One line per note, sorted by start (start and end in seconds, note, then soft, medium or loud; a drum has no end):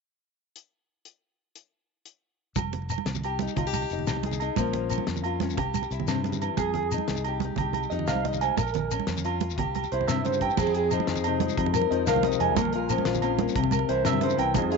0.56 closed hi-hat soft
1.05 closed hi-hat soft
1.56 closed hi-hat soft
2.06 closed hi-hat soft
2.56 2.97 F1 medium
2.56 2.87 F2 medium
2.56 muted steel-string acoustic guitar stroke medium
2.56 kick medium
2.56 closed hi-hat medium
2.56 muted conga medium
2.56 high conga medium
2.56 low agogo medium
2.56 shekere medium
2.73 closed hi-hat soft
2.73 low conga medium
2.82 low conga soft
2.89 muted steel-string acoustic guitar stroke medium
2.89 closed hi-hat soft
2.89 low agogo medium
2.89 shekere medium
2.98 muted conga medium
2.98 high conga medium
3.05 3.47 C2 medium
3.05 3.37 F3 medium
3.05 snare medium
3.05 closed hi-hat medium
3.15 low conga medium
3.15 shekere medium
3.24 3.57 G4 medium
3.24 closed hi-hat soft
3.24 low conga soft
3.24 low agogo medium
3.39 3.91 D#4 medium
3.39 closed hi-hat soft
3.39 muted conga medium
3.39 high conga medium
3.48 shekere medium
3.56 3.84 C2 medium
3.56 3.88 F2 medium
3.56 3.67 F4 medium
3.56 kick medium
3.56 closed hi-hat medium
3.56 low conga medium
3.56 low agogo medium
3.67 4.24 G4 soft
3.73 closed hi-hat soft
3.73 high conga medium
3.73 low agogo medium
3.73 shekere medium
3.82 muted conga medium
3.82 shekere soft
3.90 4.04 F1 medium
3.90 4.41 D#4 soft
3.90 closed hi-hat soft
3.90 shekere soft
3.99 low conga medium
4.07 4.48 C2 medium
4.07 4.38 F3 medium
4.07 snare medium
4.07 closed hi-hat medium
4.07 low agogo medium
4.07 shekere medium
4.16 high conga medium
4.23 4.56 G#4 soft
4.23 closed hi-hat soft
4.23 muted conga medium
4.31 low conga medium
4.31 shekere medium
4.40 4.56 D#4 soft
4.40 closed hi-hat soft
4.40 low agogo medium
4.40 shekere soft
4.56 4.98 A#1 medium
4.56 4.87 A#2 medium
4.56 5.07 F3 medium
4.56 5.56 A#3 medium
4.56 4.90 C#4 medium
4.56 5.24 F4 medium
4.56 kick medium
4.56 closed hi-hat medium
4.56 muted conga medium
4.56 high conga medium
4.56 low agogo soft
4.56 shekere medium
4.73 closed hi-hat soft
4.73 low conga medium
4.82 low conga soft
4.89 5.41 C#4 medium
4.89 closed hi-hat soft
4.89 low agogo medium
4.89 shekere medium
4.98 muted conga medium
4.98 high conga medium
5.07 5.58 F2 medium
5.07 5.38 F3 medium
5.07 snare medium
5.07 closed hi-hat medium
5.16 low conga medium
5.16 shekere medium
5.24 5.57 F4 medium
5.24 closed hi-hat soft
5.24 low conga soft
5.24 low agogo medium
5.40 5.56 C#4 medium
5.40 snare soft
5.40 closed hi-hat soft
5.40 muted conga medium
5.40 high conga medium
5.50 shekere medium
5.57 5.85 C2 medium
5.57 5.87 C3 medium
5.57 6.56 G4 medium
5.57 kick medium
5.57 closed hi-hat medium
5.57 low conga medium
5.57 low agogo medium
5.74 closed hi-hat soft
5.74 high conga medium
5.74 low agogo medium
5.74 shekere medium
5.83 muted conga medium
5.83 shekere soft
5.91 6.04 C2 medium
5.91 6.56 E4 medium
5.91 closed hi-hat soft
5.91 shekere soft
6.00 low conga medium
6.07 6.48 G2 medium
6.07 6.24 C3 medium
6.07 snare medium
6.07 closed hi-hat medium
6.07 low agogo medium
6.07 shekere medium
6.16 high conga medium
6.24 6.41 C#3 medium
6.24 closed hi-hat soft
6.24 muted conga medium
6.32 low conga medium
6.32 shekere medium
6.42 6.58 E3 medium
6.42 closed hi-hat soft
6.42 low agogo medium
6.42 shekere soft
6.57 6.99 F2 medium
6.57 6.88 F2 medium
6.57 6.70 G#4 medium
6.57 7.25 G#4 medium
6.57 kick medium
6.57 closed hi-hat medium
6.57 muted conga medium
6.57 high conga medium
6.57 low agogo medium
6.57 shekere medium
6.74 6.87 G#4 medium
6.74 closed hi-hat soft
6.74 low conga medium
6.83 low conga soft
6.91 7.42 D#4 medium
6.91 closed hi-hat soft
6.91 low agogo medium
6.91 shekere medium
6.98 muted conga medium
6.98 high conga medium
7.08 7.49 C2 medium
7.08 7.39 F3 medium
7.08 snare medium
7.08 closed hi-hat medium
7.15 low conga medium
7.15 shekere medium
7.24 7.59 G4 medium
7.24 closed hi-hat soft
7.24 low conga soft
7.24 low agogo medium
7.40 closed hi-hat soft
7.40 muted conga medium
7.40 high conga medium
7.45 7.91 D#4 medium
7.56 7.85 C2 medium
7.56 7.89 F2 medium
7.56 kick medium
7.56 closed hi-hat medium
7.56 low conga medium
7.56 low agogo medium
7.60 8.57 G4 soft
7.73 closed hi-hat soft
7.73 high conga medium
7.73 low agogo medium
7.83 shekere soft
7.90 8.05 F2 medium
7.90 8.56 D#4 medium
7.90 8.03 D#5 medium
7.90 closed hi-hat soft
7.90 shekere soft
7.99 low conga medium
8.07 8.49 C2 medium
8.07 8.24 F2 medium
8.07 8.20 F5 medium
8.07 snare medium
8.07 closed hi-hat medium
8.07 low agogo medium
8.07 shekere medium
8.15 high conga medium
8.25 8.41 G2 medium
8.25 8.37 D#5 medium
8.25 closed hi-hat soft
8.25 muted conga medium
8.33 low conga medium
8.33 shekere medium
8.41 8.58 G#2 medium
8.41 8.54 G#5 medium
8.41 closed hi-hat soft
8.41 low agogo medium
8.41 shekere soft
8.57 8.99 A#1 medium
8.57 8.88 A#2 medium
8.57 8.70 A#4 medium
8.57 muted steel-string acoustic guitar stroke medium
8.57 kick medium
8.57 closed hi-hat medium
8.57 muted conga medium
8.57 high conga medium
8.57 low agogo medium
8.57 shekere medium
8.67 shekere soft
8.74 8.87 A#4 medium
8.74 closed hi-hat soft
8.74 low conga medium
8.74 shekere soft
8.91 9.41 C#4 medium
8.91 closed hi-hat soft
8.91 low conga soft
8.91 low agogo medium
8.91 shekere medium
9.00 muted conga medium
9.00 high conga medium
9.07 9.57 F2 medium
9.07 9.38 F3 medium
9.07 snare medium
9.07 closed hi-hat medium
9.07 shekere soft
9.17 low conga medium
9.17 shekere medium
9.25 9.58 F4 medium
9.25 closed hi-hat soft
9.25 low agogo medium
9.40 muted steel-string acoustic guitar stroke medium
9.40 closed hi-hat soft
9.40 muted conga medium
9.40 high conga medium
9.50 shekere medium
9.57 9.85 C2 medium
9.57 9.88 C3 medium
9.57 10.56 G4 medium
9.57 kick medium
9.57 closed hi-hat medium
9.57 low conga medium
9.57 low agogo medium
9.75 closed hi-hat soft
9.75 high conga medium
9.75 low agogo medium
9.84 muted conga medium
9.84 shekere soft
9.92 10.05 C2 medium
9.92 10.57 E4 soft
9.92 10.04 C5 medium
9.92 closed hi-hat soft
10.01 low conga medium
10.08 10.49 G2 medium
10.08 10.25 C3 medium
10.08 10.20 E5 medium
10.08 snare medium
10.08 closed hi-hat medium
10.08 low agogo medium
10.08 shekere medium
10.17 high conga medium
10.25 10.41 C#3 medium
10.25 10.38 C5 medium
10.25 closed hi-hat soft
10.25 muted conga medium
10.25 shekere soft
10.33 shekere medium
10.41 10.58 E3 soft
10.41 10.54 G5 medium
10.41 kick medium
10.41 closed hi-hat soft
10.41 low conga soft
10.41 low agogo medium
10.50 low conga soft
10.50 shekere soft
10.57 10.99 F2 medium
10.57 11.57 F2 medium
10.57 10.71 G#4 medium
10.57 kick medium
10.57 crash medium
10.57 muted conga medium
10.57 high conga medium
10.57 low conga soft
10.57 low agogo medium
10.57 shekere medium
10.67 low conga medium
10.74 10.87 G#4 medium
10.74 11.08 G#4 medium
10.74 closed hi-hat soft
10.91 11.90 F3 medium
10.91 11.25 D#4 medium
10.91 closed hi-hat soft
10.91 low agogo medium
10.91 shekere medium
11.00 muted conga medium
11.00 high conga medium
11.00 low conga soft
11.07 11.48 F2 medium
11.07 11.75 G#4 medium
11.07 snare medium
11.07 closed hi-hat medium
11.16 low conga medium
11.16 shekere medium
11.24 11.92 C3 medium
11.24 closed hi-hat medium
11.24 low agogo medium
11.24 shekere soft
11.28 11.91 D#4 medium
11.40 12.40 G#3 medium
11.40 closed hi-hat medium
11.40 muted conga medium
11.40 high conga medium
11.49 shekere medium
11.57 11.85 F2 loud
11.57 12.57 F2 medium
11.57 kick medium
11.57 closed hi-hat medium
11.57 low agogo medium
11.66 low conga medium
11.74 12.07 A#4 medium
11.74 closed hi-hat medium
11.74 high conga medium
11.74 low agogo medium
11.74 shekere medium
11.81 muted conga medium
11.91 12.04 F2 medium
11.91 12.55 F3 medium
11.91 12.23 D#4 medium
11.91 12.03 D#5 medium
11.91 closed hi-hat soft
12.07 12.34 C2 medium
12.07 12.55 A#4 medium
12.07 12.20 F5 medium
12.07 snare medium
12.07 closed hi-hat medium
12.07 low agogo medium
12.07 shekere medium
12.16 high conga medium
12.16 low conga medium
12.23 12.54 C3 medium
12.23 12.55 D#4 medium
12.23 12.37 D#5 medium
12.23 closed hi-hat medium
12.23 muted conga loud
12.32 low conga soft
12.32 shekere medium
12.40 12.56 F2 medium
12.40 12.57 G#3 medium
12.40 12.53 G#5 medium
12.40 closed hi-hat medium
12.40 low agogo medium
12.49 low conga soft
12.56 12.97 A#1 medium
12.56 13.23 A#2 medium
12.56 12.70 A#4 medium
12.56 kick medium
12.56 closed hi-hat medium
12.56 muted conga loud
12.56 high conga loud
12.56 low conga soft
12.56 low agogo medium
12.56 shekere medium
12.65 low conga medium
12.73 13.06 F4 medium
12.73 12.86 A#4 medium
12.73 closed hi-hat soft
12.89 13.54 F3 medium
12.89 13.22 C#4 medium
12.89 closed hi-hat soft
12.89 low agogo medium
12.89 shekere medium
12.98 muted conga medium
12.98 high conga medium
13.05 13.47 A#1 medium
13.05 13.56 F4 medium
13.05 snare medium
13.05 closed hi-hat medium
13.14 low conga medium
13.14 shekere medium
13.22 13.56 F2 medium
13.22 13.54 C#4 medium
13.22 closed hi-hat soft
13.22 low agogo medium
13.22 shekere soft
13.39 13.54 A#3 medium
13.39 closed hi-hat soft
13.39 muted conga medium
13.39 high conga medium
13.48 shekere medium
13.55 13.83 C2 loud
13.55 13.90 C3 medium
13.55 kick medium
13.55 closed hi-hat medium
13.55 low agogo medium
13.64 low conga medium
13.71 14.54 A#4 medium
13.71 closed hi-hat soft
13.71 high conga medium
13.71 low agogo medium
13.71 shekere medium
13.79 muted conga medium
13.88 14.03 C2 medium
13.88 14.36 E3 medium
13.88 14.53 E4 medium
13.88 14.02 C5 medium
13.88 closed hi-hat soft
14.05 14.33 G2 medium
14.05 14.23 C3 medium
14.05 14.19 E5 medium
14.05 snare medium
14.05 closed hi-hat medium
14.05 low agogo medium
14.05 shekere medium
14.13 high conga medium
14.13 low conga medium
14.21 14.39 C#3 medium
14.21 14.36 C5 medium
14.21 closed hi-hat soft
14.21 muted conga medium
14.30 low conga soft
14.30 shekere medium
14.37 14.56 C2 medium
14.37 14.55 E3 medium
14.37 14.52 G5 medium
14.37 closed hi-hat medium
14.37 low conga soft
14.37 low agogo medium
14.46 low conga soft
14.54 14.77 F2 loud
14.54 14.77 F2 medium
14.54 14.77 D#4 medium
14.54 14.77 F4 medium
14.54 14.77 G#4 medium
14.54 muted clean electric guitar stroke medium
14.54 kick medium
14.54 closed hi-hat medium
14.54 muted conga medium
14.54 high conga medium
14.54 low conga soft
14.54 low agogo medium
14.54 shekere medium
14.62 low conga medium
14.71 14.77 F4 medium
14.71 14.77 G#4 medium
14.71 closed hi-hat medium